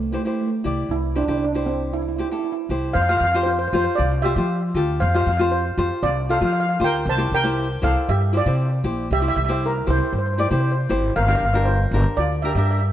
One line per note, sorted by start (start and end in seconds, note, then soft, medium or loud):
0.00 0.15 C2 medium
0.00 0.08 A3 soft
0.11 0.16 A3 soft
0.11 0.20 E4 medium
0.11 0.21 G4 medium
0.11 0.21 C5 medium
0.19 0.24 A3 soft
0.25 0.31 A3 soft
0.25 0.48 E4 medium
0.25 0.49 G4 medium
0.25 0.49 C5 medium
0.33 0.38 A3 soft
0.41 0.46 A3 medium
0.47 0.53 A3 medium
0.64 0.88 C2 medium
0.64 0.95 E4 medium
0.64 0.96 G4 medium
0.64 0.96 D5 medium
0.89 1.24 C2 medium
0.89 1.15 E4 medium
1.15 1.21 D4 medium
1.15 1.23 E4 medium
1.15 1.24 G4 medium
1.15 1.24 C5 medium
1.22 1.28 D4 medium
1.28 2.21 C2 medium
1.28 1.36 D4 medium
1.28 1.44 E4 medium
1.28 1.44 G4 medium
1.28 1.44 C5 medium
1.37 1.43 D4 medium
1.44 1.52 D4 medium
1.53 1.61 D4 medium
1.53 1.93 E4 medium
1.53 1.93 G4 medium
1.53 1.94 C5 medium
1.66 1.93 C4 medium
1.93 2.00 E4 medium
2.02 2.07 E4 medium
2.09 2.15 E4 medium
2.16 2.23 E4 soft
2.16 2.26 E4 medium
2.16 2.27 G4 medium
2.16 2.27 C5 medium
2.25 2.30 E4 soft
2.31 2.38 E4 soft
2.31 2.55 E4 medium
2.31 2.55 G4 medium
2.31 2.55 A4 medium
2.39 2.43 E4 medium
2.45 2.51 E4 medium
2.52 2.60 E4 medium
2.69 2.93 C2 medium
2.69 2.96 E4 medium
2.69 2.96 G4 medium
2.69 2.96 C5 medium
2.93 3.18 F2 loud
2.93 3.02 C5 medium
2.93 3.01 F5 loud
3.02 3.08 F5 medium
3.09 3.24 F4 medium
3.09 3.25 G4 medium
3.09 3.25 C5 medium
3.09 3.16 F5 loud
3.17 3.67 F2 medium
3.17 3.23 F5 medium
3.24 3.31 F5 medium
3.32 3.58 F4 medium
3.32 3.58 G4 medium
3.32 3.58 C5 medium
3.32 3.40 F5 medium
3.43 3.54 F4 medium
3.43 3.50 C5 medium
3.51 3.58 C5 medium
3.59 3.66 C5 medium
3.68 3.74 C5 medium
3.73 3.84 F2 loud
3.73 4.04 F4 medium
3.73 4.04 G4 medium
3.73 4.05 C5 medium
3.73 3.83 C5 medium
3.84 3.92 C5 medium
3.95 4.33 C2 loud
3.95 4.22 F4 medium
3.95 4.23 D5 medium
4.22 4.32 F4 medium
4.22 4.71 G4 medium
4.22 4.32 G4 medium
4.22 4.33 C5 medium
4.22 4.71 E5 medium
4.36 4.71 F3 loud
4.36 4.60 F4 medium
4.36 4.60 G4 medium
4.36 4.61 C5 medium
4.74 4.98 D2 medium
4.74 4.98 F4 medium
4.74 4.99 G4 medium
4.74 4.99 A4 medium
5.00 5.24 F2 loud
5.00 5.08 C5 medium
5.00 5.07 F5 medium
5.09 5.13 F5 medium
5.14 5.29 F4 medium
5.14 5.30 G4 medium
5.14 5.30 C5 medium
5.14 5.20 F5 medium
5.21 5.27 F5 medium
5.26 5.72 F2 medium
5.26 5.36 F5 medium
5.37 5.63 F4 medium
5.37 5.63 G4 medium
5.37 5.63 C5 medium
5.37 5.46 F5 medium
5.51 6.00 F4 medium
5.51 6.05 C5 medium
5.78 5.89 F2 loud
5.78 6.09 F4 medium
5.78 6.09 G4 medium
5.78 6.09 C5 medium
6.03 6.38 C2 loud
6.03 6.15 F4 medium
6.03 6.14 D5 loud
6.29 6.37 F4 medium
6.29 6.37 G4 medium
6.29 6.37 A4 medium
6.29 6.38 C5 medium
6.29 6.35 F5 medium
6.37 6.44 F5 medium
6.41 6.76 F3 loud
6.41 6.64 F4 medium
6.41 6.65 G4 medium
6.41 6.65 C5 medium
6.45 6.52 F5 medium
6.53 6.59 F5 medium
6.60 6.67 F5 medium
6.69 6.75 F5 medium
6.80 7.03 D2 medium
6.80 7.03 F4 medium
6.80 7.03 G4 medium
6.80 7.04 C5 loud
6.84 7.07 A#4 medium
6.84 7.09 G5 loud
7.06 7.29 C2 loud
7.06 7.20 C5 medium
7.06 7.20 A5 loud
7.17 7.33 E4 medium
7.17 7.34 G4 medium
7.17 7.34 C5 medium
7.31 7.77 C2 medium
7.31 7.81 A#4 medium
7.31 7.86 G5 loud
7.44 7.67 E4 medium
7.44 7.67 G4 medium
7.44 7.68 C5 medium
7.82 7.95 C2 loud
7.82 8.13 E4 medium
7.82 8.13 G4 medium
7.82 8.07 A4 medium
7.82 8.14 C5 medium
7.82 8.07 F5 loud
8.09 8.43 G2 medium
8.09 8.33 G4 medium
8.09 8.35 E5 loud
8.33 8.41 E4 medium
8.33 8.41 G4 medium
8.33 8.42 C5 medium
8.37 8.83 F4 medium
8.37 8.83 D5 medium
8.46 8.81 C3 loud
8.46 8.69 E4 medium
8.46 8.70 G4 medium
8.46 8.70 C5 medium
8.84 9.07 A#1 medium
8.84 9.07 E4 medium
8.84 9.08 G4 medium
8.84 9.08 C5 medium
9.11 9.34 C2 medium
9.11 9.19 G4 medium
9.11 9.19 E5 loud
9.20 9.38 E4 medium
9.20 9.38 G4 medium
9.20 9.38 C5 medium
9.20 9.27 E5 medium
9.28 9.35 E5 loud
9.36 9.82 C2 medium
9.36 9.42 E5 medium
9.45 9.72 E4 medium
9.45 9.50 E5 medium
9.49 9.72 G4 medium
9.49 9.72 C5 medium
9.49 9.58 E5 medium
9.66 9.88 E4 medium
9.66 9.90 A#4 medium
9.87 9.99 C2 loud
9.87 10.18 E4 medium
9.87 9.96 E4 medium
9.87 10.18 G4 medium
9.87 10.18 C5 medium
9.87 9.96 C5 medium
9.98 10.04 C5 medium
10.05 10.11 C5 medium
10.13 10.47 G2 medium
10.13 10.17 C5 medium
10.18 10.25 C5 medium
10.26 10.32 C5 medium
10.33 10.39 C5 medium
10.38 10.46 E4 medium
10.38 10.46 G4 medium
10.38 10.47 C5 medium
10.38 10.47 D5 medium
10.49 10.86 C3 loud
10.49 10.74 E4 medium
10.49 10.74 G4 medium
10.49 10.54 C5 medium
10.49 10.75 C5 medium
10.55 10.59 C5 medium
10.60 10.68 C5 medium
10.71 10.78 C5 medium
10.89 11.13 G#1 medium
10.89 11.13 E4 medium
10.89 11.13 G4 medium
10.89 11.13 C5 medium
11.16 11.39 G1 loud
11.16 11.23 A#4 medium
11.16 11.21 F5 loud
11.22 11.27 F5 medium
11.28 11.43 D4 medium
11.28 11.44 G4 medium
11.28 11.44 A#4 medium
11.28 11.34 F5 loud
11.35 11.44 F5 medium
11.40 11.86 G1 medium
11.45 11.52 F5 medium
11.54 11.77 D4 medium
11.54 11.78 G4 medium
11.54 11.78 A#4 loud
11.54 11.60 F5 medium
11.65 12.15 F4 medium
11.65 12.19 C5 medium
11.91 12.03 G1 loud
11.91 12.23 D4 medium
11.91 12.24 G4 medium
11.91 12.24 A#4 medium
12.17 12.52 D2 medium
12.17 12.42 F4 medium
12.17 12.44 D5 loud
12.42 12.51 D4 medium
12.42 12.52 G4 medium
12.42 12.52 A#4 medium
12.42 12.48 E5 medium
12.49 12.55 E5 medium
12.55 12.90 G2 loud
12.55 12.80 D4 medium
12.55 12.80 G4 medium
12.55 12.80 A#4 medium
12.55 12.62 E5 medium
12.64 12.70 E5 medium
12.71 12.77 E5 medium
12.78 12.87 E5 medium